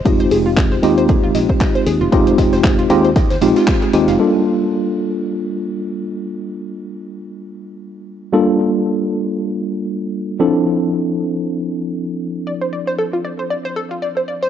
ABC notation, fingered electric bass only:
X:1
M:4/4
L:1/16
Q:"Swing 16ths" 1/4=116
K:Gm
V:1 name="Fingered electric bass" clef=bass
F,,, z F,,,4 E,,4 B,,, z3 E,, F,,, | F,,, z F,,,4 E,,4 B,,, z3 E,, F,,, | z16 | z16 |
z16 | z16 | z16 |]